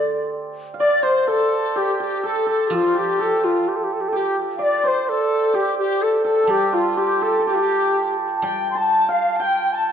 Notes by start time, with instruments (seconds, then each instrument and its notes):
Already playing: guzheng D3 A3 D4 F4 A4, hammered dulcimer G4 A4 C5 D5, xiao D5, dizi D5
0.74 hammered dulcimer F5
0.79 dizi D5, hammered dulcimer D5, xiao D5
1.03 hammered dulcimer C5, dizi C5, xiao C5
1.27 hammered dulcimer A4, dizi A4, xiao A4
1.76 hammered dulcimer G4, dizi G4, xiao G4
2.00 hammered dulcimer G4, dizi G4, xiao G4
2.23 hammered dulcimer A4, dizi A4, xiao A4
2.46 hammered dulcimer A4, dizi A4
2.51 xiao A4
2.68 guzheng F3, hammered dulcimer F4, dizi G4
2.74 dizi F4, xiao F4
2.94 hammered dulcimer G4, dizi G4, xiao G4
3.19 hammered dulcimer A4, xiao A4
3.44 dizi F4, xiao F4
3.68 xiao G4
3.76 xiao A4
3.84 xiao G4
3.93 xiao A4
4.01 xiao G4
4.08 xiao A4
4.12 hammered dulcimer G4, dizi G4
4.17 xiao G4
4.56 hammered dulcimer D5, dizi F5
4.62 dizi D5, xiao D5
4.84 hammered dulcimer C5, dizi C5
4.88 xiao C5
5.09 dizi A4, xiao A4
5.53 hammered dulcimer G4, dizi G4, xiao G4
5.78 xiao G4, dizi G4
6.02 dizi A4, xiao A4
6.24 hammered dulcimer A4, dizi A4, xiao A4
6.44 guzheng G3, hammered dulcimer A4
6.50 hammered dulcimer G4, dizi G4, xiao G4
6.73 hammered dulcimer F4, xiao F4, dizi F4
6.97 xiao G4, hammered dulcimer G4, dizi G4
7.22 hammered dulcimer A4, xiao A4
7.39 hammered dulcimer A4
7.47 hammered dulcimer G4, dizi G4, xiao G4
7.54 dizi F4
7.60 dizi G4
8.37 xiao A5
8.42 guzheng G3, hammered dulcimer G5, dizi G5, xiao G5
8.71 dizi C6
8.75 hammered dulcimer A5, xiao A5, dizi A5
9.08 xiao F5, hammered dulcimer F5, dizi F5
9.36 hammered dulcimer G5, dizi A5
9.41 xiao G5, dizi G5
9.73 xiao A5, dizi A5